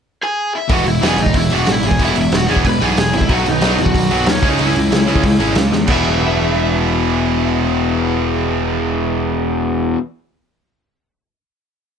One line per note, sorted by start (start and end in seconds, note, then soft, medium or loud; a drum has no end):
0.23 0.52 G#4 medium
0.23 0.55 G#5 medium
0.55 0.70 E4 medium
0.55 0.72 E5 medium
0.68 0.84 E1 loud
0.68 0.84 E2 medium
0.68 0.85 B2 medium
0.68 0.85 E3 loud
0.68 0.85 E3 medium
0.68 0.85 G#3 medium
0.68 0.86 B3 loud
0.68 kick loud
0.68 open hi-hat medium
0.73 0.87 F#4 medium
0.73 0.88 F#5 medium
0.85 1.00 E1 medium
0.85 1.00 E2 medium
0.85 1.01 B2 medium
0.85 1.01 E3 medium
0.85 1.01 G#3 medium
0.85 1.02 E4 medium
0.85 1.02 E5 medium
0.85 open hi-hat medium
1.01 1.16 E1 medium
1.01 1.15 E2 medium
1.01 1.16 B2 loud
1.01 1.17 E3 medium
1.01 1.18 G#3 medium
1.01 1.18 B3 medium
1.01 snare loud
1.01 open hi-hat medium
1.07 1.20 G#4 medium
1.07 1.21 G#5 medium
1.17 1.32 A1 medium
1.17 1.32 E2 medium
1.17 1.32 B2 medium
1.17 1.33 E3 medium
1.17 1.34 G#3 medium
1.17 1.35 D#4 medium
1.17 open hi-hat medium
1.22 1.36 D#5 medium
1.26 kick medium
1.33 1.49 E1 medium
1.33 1.49 E2 medium
1.33 1.49 B2 medium
1.33 1.50 E3 medium
1.33 1.50 G#3 medium
1.33 1.49 E4 medium
1.33 1.52 E5 medium
1.33 kick loud
1.33 open hi-hat medium
1.50 1.65 E1 medium
1.50 1.65 E2 medium
1.50 1.66 B2 medium
1.50 1.67 E3 medium
1.50 1.67 G#3 medium
1.50 1.67 B3 medium
1.50 open hi-hat medium
1.54 1.68 F#4 medium
1.54 1.72 F#5 medium
1.66 1.81 A1 medium
1.66 1.82 E2 medium
1.66 1.82 B2 medium
1.66 1.82 E3 medium
1.66 1.83 G#3 medium
1.66 1.84 E4 medium
1.66 snare loud
1.66 open hi-hat medium
1.72 1.87 E5 medium
1.83 1.98 G#1 medium
1.83 1.97 E2 medium
1.83 1.99 B2 medium
1.83 1.99 E3 medium
1.83 1.99 G#3 medium
1.83 open hi-hat medium
1.87 2.00 G#4 medium
1.87 2.02 G#5 medium
1.91 kick medium
1.99 2.14 E1 loud
1.99 2.15 E2 medium
1.99 2.15 B2 medium
1.99 2.15 E3 medium
1.99 2.16 E3 medium
1.99 2.16 G#3 medium
1.99 2.16 B3 loud
1.99 kick medium
1.99 open hi-hat medium
2.03 2.16 E4 medium
2.03 2.19 E5 medium
2.16 2.30 E1 medium
2.16 2.31 E2 medium
2.16 2.31 B2 medium
2.16 2.32 E3 medium
2.16 2.32 G#3 medium
2.16 open hi-hat medium
2.21 2.34 E4 medium
2.21 2.34 E5 medium
2.32 2.47 E1 loud
2.32 2.47 E2 medium
2.32 2.47 B2 medium
2.32 2.48 E3 medium
2.32 2.48 G#3 medium
2.32 2.47 F#4 medium
2.32 snare loud
2.32 open hi-hat medium
2.37 2.49 F#5 medium
2.48 2.63 E1 medium
2.48 2.63 E2 loud
2.48 2.63 B2 loud
2.48 2.64 E3 medium
2.48 2.64 E3 loud
2.48 2.64 G#3 medium
2.48 2.65 B3 loud
2.48 2.63 G#4 medium
2.48 2.65 G#5 medium
2.48 open hi-hat medium
2.56 kick medium
2.64 2.79 E1 medium
2.64 2.79 E2 medium
2.64 2.79 B2 medium
2.64 2.80 E3 medium
2.64 2.80 G#3 medium
2.64 2.81 B4 medium
2.64 kick loud
2.64 open hi-hat medium
2.69 2.84 B5 loud
2.81 2.95 B1 medium
2.81 2.95 E2 medium
2.81 2.95 B2 medium
2.81 2.96 E3 medium
2.81 2.97 G#3 loud
2.81 2.97 B3 loud
2.81 3.12 G#4 medium
2.81 3.13 G#5 loud
2.81 open hi-hat medium
2.96 3.12 E1 medium
2.96 3.11 E2 medium
2.96 3.11 B2 medium
2.96 3.12 E3 medium
2.96 3.12 G#3 medium
2.96 snare loud
2.96 open hi-hat medium
3.13 3.28 G#1 medium
3.13 3.28 E2 medium
3.13 3.28 B2 medium
3.13 3.28 E3 medium
3.13 3.28 G#3 medium
3.13 3.30 E4 medium
3.13 open hi-hat medium
3.18 3.32 E5 loud
3.18 kick medium
3.29 3.44 B1 loud
3.29 3.44 B2 medium
3.29 3.45 D#3 loud
3.29 3.45 F#3 loud
3.29 3.45 F#3 medium
3.29 3.45 B3 loud
3.29 3.46 F#4 medium
3.29 kick loud
3.29 open hi-hat medium
3.34 3.48 F#5 medium
3.45 3.60 B1 medium
3.45 3.60 B2 medium
3.45 3.61 B2 medium
3.45 3.61 D#3 medium
3.45 3.60 F#3 medium
3.45 3.77 D#4 medium
3.45 open hi-hat medium
3.52 3.82 D#5 medium
3.61 3.76 B1 medium
3.61 3.75 B2 medium
3.61 3.76 B2 medium
3.61 3.77 D#3 loud
3.61 3.76 F#3 medium
3.61 3.78 F#3 loud
3.61 3.77 B3 loud
3.61 snare loud
3.61 open hi-hat medium
3.76 3.92 E2 medium
3.76 3.92 B2 medium
3.76 3.93 D#3 medium
3.76 3.92 F#3 medium
3.76 open hi-hat medium
3.81 4.25 F#4 medium
3.81 4.26 F#5 medium
3.86 kick medium
3.94 4.09 B1 medium
3.94 4.09 B2 medium
3.94 4.09 D#3 medium
3.94 4.09 F#3 medium
3.94 kick loud
3.94 open hi-hat medium
4.10 4.25 B1 medium
4.10 4.25 B2 medium
4.10 4.26 D#3 medium
4.10 4.25 F#3 medium
4.10 4.26 F#3 loud
4.10 4.26 B3 medium
4.10 open hi-hat medium
4.26 4.41 D#2 medium
4.26 4.41 B2 medium
4.26 4.41 D#3 medium
4.26 4.41 F#3 medium
4.26 4.43 C#4 medium
4.26 snare loud
4.26 open hi-hat medium
4.32 4.49 C#5 medium
4.43 4.57 C#2 medium
4.43 4.57 C#3 loud
4.43 4.57 C#3 medium
4.43 4.58 G#3 medium
4.43 4.58 G#3 loud
4.43 4.58 C#4 loud
4.43 4.59 C#4 loud
4.43 kick loud
4.43 open hi-hat medium
4.49 4.61 D#4 medium
4.49 4.62 D#5 medium
4.58 4.73 C#2 loud
4.58 4.74 C#3 medium
4.58 4.74 G#3 medium
4.58 4.74 C#4 medium
4.58 4.74 C#4 loud
4.58 open hi-hat medium
4.66 5.55 E4 medium
4.66 5.60 E5 medium
4.76 4.89 C#2 medium
4.76 4.90 C#3 medium
4.76 4.90 G#3 medium
4.76 open hi-hat medium
4.91 5.06 C#2 medium
4.91 5.05 C#3 medium
4.91 5.06 C#3 medium
4.91 5.06 G#3 medium
4.91 snare loud
4.91 open hi-hat medium
5.06 5.22 C#2 medium
5.06 5.22 C#3 medium
5.06 5.22 G#3 medium
5.06 5.22 G#3 loud
5.06 5.22 C#4 loud
5.06 5.23 C#4 loud
5.06 open hi-hat medium
5.16 kick medium
5.23 5.38 C#2 medium
5.23 5.38 C#3 medium
5.23 5.38 G#3 medium
5.23 kick loud
5.23 open hi-hat medium
5.39 5.54 G#1 medium
5.39 5.53 C#3 medium
5.39 5.54 C#3 medium
5.39 5.54 G#3 medium
5.39 5.55 G#3 loud
5.39 5.55 C#4 medium
5.39 5.55 C#4 loud
5.39 open hi-hat medium
5.55 5.70 C#2 medium
5.55 5.70 C#3 medium
5.55 5.70 G#3 medium
5.55 5.71 G#3 medium
5.55 snare loud
5.55 open hi-hat medium
5.71 5.86 E2 medium
5.71 5.86 C#3 medium
5.71 5.86 G#3 medium
5.71 5.87 G#3 medium
5.71 snare medium
5.87 9.95 E1 medium
5.87 9.98 E2 medium
5.87 9.99 B2 medium
5.87 9.97 E3 medium
5.87 9.98 G#3 loud
5.87 9.99 B3 medium
5.87 9.99 E4 loud
5.87 kick loud
5.87 crash medium
5.91 10.00 E3 medium
5.91 9.26 E5 medium